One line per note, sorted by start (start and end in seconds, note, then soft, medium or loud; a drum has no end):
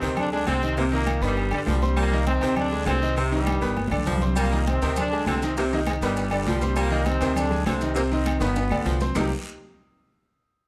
0.00 0.44 D2 loud
0.00 0.15 C3 medium
0.00 0.26 C3 medium
0.00 0.25 D#3 medium
0.00 0.16 C4 loud
0.00 0.27 C4 medium
0.00 0.27 C5 medium
0.00 high conga soft
0.00 low agogo medium
0.00 short guiro medium
0.17 0.31 D3 medium
0.17 0.31 D4 loud
0.17 high conga soft
0.17 low conga medium
0.17 low agogo loud
0.17 long guiro medium
0.17 claves medium
0.32 0.46 D3 medium
0.32 0.57 G#3 medium
0.32 0.46 D4 loud
0.32 0.57 G#4 medium
0.32 0.57 G#5 medium
0.32 high conga soft
0.46 1.16 C2 loud
0.46 0.75 C3 medium
0.46 0.63 D3 medium
0.46 0.75 C4 loud
0.46 high conga medium
0.46 low agogo loud
0.46 short guiro medium
0.46 claves medium
0.62 0.75 D#3 medium
0.62 0.75 D#4 medium
0.62 0.75 D#5 medium
0.62 high conga soft
0.62 short guiro medium
0.76 0.84 A#2 medium
0.76 1.00 C3 loud
0.76 0.90 C3 medium
0.76 0.85 A#3 loud
0.76 0.90 C4 medium
0.76 0.91 C5 medium
0.76 high conga soft
0.76 low agogo medium
0.76 long guiro medium
0.92 1.21 A#2 medium
0.92 1.16 D#3 medium
0.92 1.21 A#3 loud
0.92 1.16 D#4 medium
0.92 1.17 D#5 medium
0.92 high conga soft
1.07 high conga loud
1.07 low agogo loud
1.07 short guiro medium
1.07 claves medium
1.21 1.49 G1 loud
1.21 1.51 G2 medium
1.21 1.46 D#3 medium
1.21 1.51 G3 loud
1.21 1.46 B3 medium
1.21 1.47 B4 medium
1.21 1.47 B5 medium
1.21 high conga soft
1.21 short guiro medium
1.37 high conga soft
1.37 low agogo medium
1.37 long guiro medium
1.51 1.65 B1 medium
1.51 1.60 G2 medium
1.51 1.76 D3 medium
1.51 1.60 G3 loud
1.51 1.76 D4 medium
1.51 1.77 D5 medium
1.51 high conga soft
1.51 low agogo loud
1.51 claves medium
1.66 2.36 C2 loud
1.66 1.95 G2 medium
1.66 1.82 F3 medium
1.66 1.95 G3 loud
1.66 high conga medium
1.66 low timbale medium
1.66 short guiro medium
1.82 2.07 C4 medium
1.82 2.07 C5 medium
1.82 2.07 C6 medium
1.82 high conga medium
1.82 short guiro medium
1.96 2.26 A#2 medium
1.96 2.20 G3 loud
1.96 2.26 A#3 loud
1.96 high conga soft
1.96 low agogo loud
1.96 long guiro medium
1.96 claves medium
2.12 2.37 D#3 medium
2.12 2.37 D#4 medium
2.12 2.37 D#5 medium
2.27 2.55 C3 medium
2.27 2.55 C4 loud
2.27 high conga loud
2.27 low agogo medium
2.27 short guiro medium
2.41 2.83 D2 loud
2.41 2.66 C3 medium
2.41 2.65 D#3 medium
2.41 2.67 C4 loud
2.41 2.67 C5 loud
2.41 high conga soft
2.41 low agogo medium
2.41 short guiro medium
2.56 2.85 D3 medium
2.56 2.85 D4 loud
2.56 high conga soft
2.56 low conga medium
2.56 low agogo loud
2.56 long guiro medium
2.56 claves medium
2.71 2.96 G#3 medium
2.71 2.96 G#4 medium
2.71 2.96 G#5 medium
2.71 high conga soft
2.85 3.56 C2 loud
2.85 3.15 C3 medium
2.85 3.01 D3 medium
2.85 3.15 C4 loud
2.85 high conga medium
2.85 low timbale medium
2.85 low agogo loud
2.85 short guiro medium
2.85 claves medium
3.02 3.14 D#3 medium
3.02 3.14 D#4 medium
3.02 3.14 D#5 medium
3.02 high conga soft
3.02 short guiro medium
3.16 3.40 C3 loud
3.16 3.29 C3 medium
3.16 3.32 C3 medium
3.16 3.29 C4 medium
3.16 3.31 C4 loud
3.16 3.29 C5 medium
3.16 high conga soft
3.16 low agogo medium
3.16 long guiro medium
3.31 3.77 G2 medium
3.31 3.56 D#3 medium
3.31 3.77 G3 loud
3.31 3.56 D#4 medium
3.31 3.57 D#5 medium
3.31 high conga soft
3.46 high conga loud
3.46 low agogo loud
3.46 short guiro medium
3.46 claves medium
3.61 3.89 G1 medium
3.61 3.85 D#3 medium
3.61 3.86 B3 medium
3.61 3.86 B4 medium
3.61 3.87 B5 medium
3.61 high conga soft
3.61 short guiro medium
3.77 high conga medium
3.77 low agogo loud
3.77 long guiro medium
3.87 4.05 B1 medium
3.87 4.16 D4 medium
3.87 high conga loud
3.91 4.16 D3 medium
3.91 4.16 D5 medium
3.91 low agogo loud
3.91 claves medium
3.97 low conga medium
4.06 4.76 C2 loud
4.06 4.35 G2 medium
4.06 4.22 F3 medium
4.06 4.35 G3 medium
4.06 low conga loud
4.06 short guiro medium
4.18 low conga loud
4.18 short guiro medium
4.22 4.46 C4 medium
4.22 4.46 C5 medium
4.22 4.46 C6 medium
4.27 low conga medium
4.35 4.66 A#2 medium
4.35 4.59 G3 medium
4.35 4.65 A#3 loud
4.35 low agogo loud
4.35 long guiro medium
4.35 claves medium
4.35 maracas loud
4.51 4.76 D#3 medium
4.51 4.76 D#4 medium
4.51 4.77 D#5 medium
4.51 high conga soft
4.51 maracas soft
4.67 4.97 C3 medium
4.67 4.97 C4 loud
4.67 high conga loud
4.67 low agogo medium
4.67 short guiro medium
4.67 maracas soft
4.81 5.23 D2 loud
4.81 5.06 C3 medium
4.81 5.06 D#3 medium
4.81 5.07 C4 medium
4.81 5.07 C5 medium
4.81 high conga soft
4.81 low agogo medium
4.81 short guiro medium
4.81 maracas medium
4.96 5.26 D3 medium
4.96 5.26 D4 loud
4.96 high conga soft
4.96 low conga medium
4.96 low agogo loud
4.96 long guiro medium
4.96 claves medium
4.96 maracas medium
5.12 5.36 G#3 medium
5.12 5.37 G#4 medium
5.12 5.37 G#5 medium
5.12 high conga soft
5.12 maracas soft
5.26 5.96 C2 loud
5.26 5.55 C3 medium
5.26 5.42 D3 medium
5.26 5.55 C4 loud
5.26 high conga medium
5.26 low timbale medium
5.26 low agogo loud
5.26 short guiro medium
5.26 claves medium
5.26 maracas soft
5.42 5.55 D#3 medium
5.42 5.55 D#4 medium
5.42 5.55 D#5 medium
5.42 high conga soft
5.42 short guiro medium
5.42 maracas medium
5.57 5.64 A#2 medium
5.57 5.81 C3 loud
5.57 5.70 C3 medium
5.57 5.64 A#3 loud
5.57 5.70 C4 medium
5.57 5.70 C5 medium
5.57 high conga soft
5.57 low agogo medium
5.57 long guiro medium
5.57 maracas medium
5.71 5.81 A#2 medium
5.71 5.97 D#3 medium
5.71 5.80 A#3 medium
5.71 5.97 D#4 medium
5.71 5.97 D#5 medium
5.71 high conga soft
5.71 maracas soft
5.87 5.95 G#2 medium
5.87 5.94 G#3 loud
5.87 high conga loud
5.87 low agogo loud
5.87 short guiro medium
5.87 claves medium
5.87 maracas soft
6.01 6.43 G1 loud
6.01 6.44 G2 medium
6.01 6.25 D#3 medium
6.01 6.44 G3 loud
6.01 6.27 B3 medium
6.01 6.27 B4 medium
6.01 6.27 B5 medium
6.01 high conga soft
6.01 short guiro medium
6.01 maracas medium
6.16 high conga soft
6.16 low agogo medium
6.16 long guiro medium
6.16 maracas loud
6.31 6.56 D3 medium
6.31 6.56 D4 medium
6.31 6.56 D5 medium
6.31 high conga soft
6.31 low agogo loud
6.31 claves medium
6.31 maracas soft
6.46 7.16 C2 loud
6.46 6.75 G2 medium
6.46 6.63 F3 medium
6.46 6.75 G3 loud
6.46 high conga medium
6.46 low timbale medium
6.46 short guiro medium
6.46 maracas soft
6.61 6.86 C4 medium
6.61 6.86 C5 medium
6.61 6.86 C6 medium
6.61 high conga medium
6.61 short guiro medium
6.61 maracas medium
6.76 7.07 A#2 medium
6.76 7.00 G3 loud
6.76 7.07 A#3 loud
6.76 high conga soft
6.76 low agogo loud
6.76 long guiro medium
6.76 claves medium
6.76 maracas medium
6.90 7.15 D#3 medium
6.90 7.15 D#4 medium
6.90 7.16 D#5 medium
6.90 high conga soft
6.90 maracas soft
7.06 7.37 C3 medium
7.06 7.36 C4 loud
7.06 high conga loud
7.06 low agogo medium
7.06 short guiro medium
7.06 maracas soft
7.21 7.63 D2 loud
7.21 7.46 C3 medium
7.21 7.45 D#3 medium
7.21 7.46 C4 medium
7.21 7.46 C5 medium
7.21 high conga soft
7.21 low agogo medium
7.21 short guiro medium
7.21 maracas medium
7.36 7.65 D3 medium
7.36 7.64 D4 loud
7.36 high conga soft
7.36 low conga medium
7.36 low agogo loud
7.36 long guiro medium
7.36 claves medium
7.36 maracas medium
7.50 7.75 G#3 medium
7.50 7.75 G#4 medium
7.50 7.76 G#5 medium
7.50 high conga soft
7.50 low conga medium
7.50 maracas soft
7.66 8.36 C2 loud
7.66 7.94 C3 medium
7.66 7.82 D3 medium
7.66 7.94 C4 loud
7.66 high conga medium
7.66 low timbale medium
7.66 low agogo loud
7.66 short guiro medium
7.66 claves medium
7.66 maracas soft
7.81 7.93 D#3 medium
7.81 7.94 D#4 medium
7.81 7.94 D#5 medium
7.81 high conga soft
7.81 short guiro medium
7.81 maracas medium
7.94 8.04 A#2 medium
7.94 8.18 C3 medium
7.94 8.08 C3 medium
7.94 8.03 A#3 loud
7.94 8.08 C4 medium
7.94 8.08 C5 medium
7.94 high conga soft
7.94 low agogo medium
7.94 long guiro medium
7.94 maracas medium
8.11 8.39 C3 medium
8.11 8.36 D#3 medium
8.11 8.39 C4 loud
8.11 8.36 D#4 medium
8.11 8.36 D#5 medium
8.11 high conga soft
8.11 maracas soft
8.25 high conga loud
8.25 low agogo loud
8.25 short guiro medium
8.25 claves medium
8.25 maracas soft
8.40 8.68 G1 loud
8.40 8.98 B2 medium
8.40 8.63 D#3 medium
8.40 8.66 B3 medium
8.40 8.97 B3 loud
8.40 8.66 B4 medium
8.40 8.66 B5 medium
8.40 high conga soft
8.40 high timbale medium
8.40 short guiro medium
8.40 maracas medium
8.56 high conga soft
8.56 high timbale medium
8.56 low agogo medium
8.56 long guiro medium
8.56 maracas loud
8.70 8.85 B1 medium
8.70 8.96 D3 medium
8.70 8.96 D4 medium
8.70 8.96 D5 medium
8.70 high conga loud
8.70 low agogo loud
8.70 claves medium
8.70 maracas soft
8.85 9.12 C2 loud
8.85 9.01 F3 medium
8.85 low conga loud
8.85 short guiro medium
8.85 maracas soft
9.00 9.13 C4 medium
9.00 9.14 C5 medium
9.00 9.13 C6 medium
9.00 low conga medium
9.00 low timbale medium
9.00 short guiro medium
9.00 maracas medium
9.15 9.29 C2 loud
9.15 9.25 C3 medium
9.15 9.29 C3 medium
9.15 9.30 G3 medium
9.15 9.30 A#3 medium
9.15 9.30 C4 medium
9.15 9.30 D#4 medium
9.15 9.30 G4 loud
9.15 low conga loud
9.15 low timbale loud
9.15 long guiro loud
9.15 claves loud
9.15 maracas loud